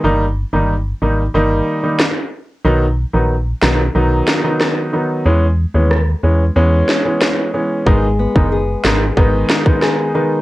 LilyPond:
<<
  \new Staff \with { instrumentName = "Nylon-string guitar" } { \time 4/4 \key gis \minor \tempo 4 = 92 r1 | r1 | r1 | <gis gis'>8 b8 gis'8 dis'8 b8 dis'8 gis'8 dis'8 | }
  \new Staff \with { instrumentName = "Grand piano" } { \time 4/4 \key gis \minor <dis g ais dis'>16 r8 <dis g ais dis'>16 r8 <dis g ais dis'>16 r16 <dis g ais dis'>8. <dis g ais dis'>16 r4 | <dis fis b dis'>16 r8 <dis fis b dis'>16 r8 <dis fis b dis'>16 r16 <dis fis b dis'>8. <dis fis b dis'>8. <dis fis b dis'>8 | <e gis b cis'>16 r8 <e gis b cis'>16 r8 <e gis b cis'>16 r16 <e gis b cis'>8. <e gis b cis'>8. <e gis b cis'>8 | <dis gis b dis'>16 r8 <dis gis b dis'>16 r8 <dis gis b dis'>16 r16 <dis gis b dis'>8. <dis gis b dis'>8. <dis gis b dis'>8 | }
  \new Staff \with { instrumentName = "FM bass" } { \clef bass \time 4/4 \key gis \minor g,,8. g,,8. gis,,8 g,,8 r4. | b,,8. ais,,8. b,,8 b,,8 r4. | e,8. dis,8. e,8 e,8 r4. | gis,,8. fis,,8. gis,,8 gis,,8 r4. | }
  \new DrumStaff \with { instrumentName = "Drums" } \drummode { \time 4/4 r4 r4 r4 <ss sn>4 | r4 r8 <ss sn>8 r8 <ss sn>8 <ss sn>4 | r4 ss4 r8 sn8 <ss sn>4 | bd8. bd16 r8 <ss sn>8 bd8 <ss sn>16 bd16 <ss sn>4 | }
>>